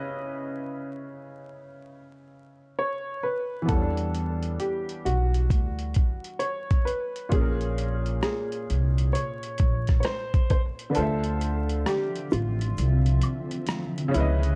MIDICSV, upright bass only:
0, 0, Header, 1, 2, 480
1, 0, Start_track
1, 0, Tempo, 909091
1, 25, Time_signature, 4, 2, 24, 8
1, 7684, End_track
2, 0, Start_track
2, 0, Title_t, "Upright bass"
2, 0, Program_c, 0, 32
2, 1951, Note_on_c, 0, 40, 90
2, 2407, Note_off_c, 0, 40, 0
2, 2671, Note_on_c, 0, 35, 83
2, 2887, Note_off_c, 0, 35, 0
2, 2908, Note_on_c, 0, 38, 83
2, 3125, Note_off_c, 0, 38, 0
2, 3869, Note_on_c, 0, 34, 91
2, 4326, Note_off_c, 0, 34, 0
2, 4594, Note_on_c, 0, 36, 86
2, 4809, Note_off_c, 0, 36, 0
2, 5072, Note_on_c, 0, 34, 82
2, 5288, Note_off_c, 0, 34, 0
2, 5791, Note_on_c, 0, 38, 102
2, 6247, Note_off_c, 0, 38, 0
2, 6511, Note_on_c, 0, 33, 85
2, 6727, Note_off_c, 0, 33, 0
2, 6749, Note_on_c, 0, 36, 96
2, 6966, Note_off_c, 0, 36, 0
2, 7471, Note_on_c, 0, 37, 94
2, 7684, Note_off_c, 0, 37, 0
2, 7684, End_track
0, 0, End_of_file